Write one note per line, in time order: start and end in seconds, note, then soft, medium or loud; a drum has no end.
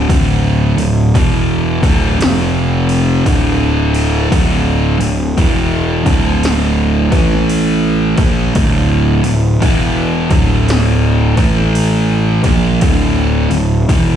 0.10 0.73 D1 loud
0.10 0.75 D2 loud
0.10 0.75 A2 loud
0.10 0.75 D3 loud
0.10 kick loud
0.10 crash medium
0.77 1.11 D1 medium
0.77 1.07 D2 medium
0.77 1.07 A2 medium
0.77 crash medium
1.14 1.78 E1 loud
1.14 1.80 E2 medium
1.14 1.80 B2 medium
1.14 1.80 E3 medium
1.14 kick loud
1.14 crash medium
1.82 2.17 D1 medium
1.82 2.18 D2 medium
1.82 2.18 A2 loud
1.82 2.19 D3 loud
1.82 kick loud
1.82 crash medium
2.19 3.21 F1 loud
2.19 3.23 F2 medium
2.19 3.24 C3 medium
2.19 3.24 F3 loud
2.19 snare loud
2.19 crash medium
2.89 crash medium
3.26 4.27 D1 medium
3.26 4.29 D2 medium
3.26 4.30 A2 medium
3.26 4.30 D3 loud
3.26 kick medium
3.26 crash medium
3.94 crash medium
4.30 4.96 D1 loud
4.30 4.97 D2 medium
4.30 4.97 A2 medium
4.30 4.97 D3 loud
4.30 kick loud
4.30 crash medium
4.99 5.34 D1 medium
4.99 5.29 D2 medium
4.99 5.29 A2 medium
4.99 crash medium
5.37 6.02 E1 medium
5.37 6.03 E2 medium
5.37 6.03 B2 medium
5.37 6.03 E3 medium
5.37 kick loud
5.37 crash medium
6.04 7.08 D1 medium
6.04 7.08 D2 loud
6.04 7.09 A2 loud
6.04 7.09 D3 loud
6.04 kick loud
6.04 crash medium
6.43 snare loud
6.43 crash medium
7.10 8.14 A1 medium
7.10 8.15 A2 medium
7.10 8.15 E3 loud
7.10 8.15 A3 loud
7.10 kick loud
7.10 crash medium
7.33 snare soft
7.49 crash medium
8.17 8.53 A#1 loud
8.17 8.54 A#2 medium
8.17 8.54 F3 loud
8.17 8.54 A#3 loud
8.17 kick loud
8.17 crash medium
8.54 9.20 D1 loud
8.54 9.21 D2 medium
8.54 9.22 A2 loud
8.54 9.22 D3 loud
8.54 kick loud
8.54 crash medium
9.23 9.59 D1 medium
9.23 9.54 D2 medium
9.23 9.54 A2 medium
9.23 crash medium
9.60 10.26 E1 medium
9.60 10.28 E2 medium
9.60 10.28 B2 medium
9.60 10.28 E3 loud
9.60 kick loud
9.60 crash medium
10.30 11.33 D1 loud
10.30 11.34 D2 loud
10.30 11.35 A2 loud
10.30 11.35 D3 loud
10.30 kick loud
10.30 crash medium
10.68 snare loud
10.68 crash medium
11.36 12.40 A1 loud
11.36 12.41 A2 loud
11.36 12.41 E3 medium
11.36 12.42 A3 loud
11.36 kick loud
11.36 crash medium
11.58 snare soft
11.75 crash medium
12.44 12.79 A#1 loud
12.44 12.80 A#2 medium
12.44 12.81 F3 medium
12.44 12.81 A#3 loud
12.44 kick loud
12.44 crash medium
12.81 13.46 D1 loud
12.81 13.48 D2 loud
12.81 13.48 A2 medium
12.81 13.48 D3 medium
12.81 kick loud
12.81 crash medium
13.50 13.85 D1 medium
13.50 13.80 D2 medium
13.50 13.81 A2 medium
13.50 crash soft
13.88 14.16 E1 medium
13.88 14.16 E2 medium
13.88 14.16 B2 medium
13.88 14.16 E3 medium
13.88 kick loud
13.88 crash medium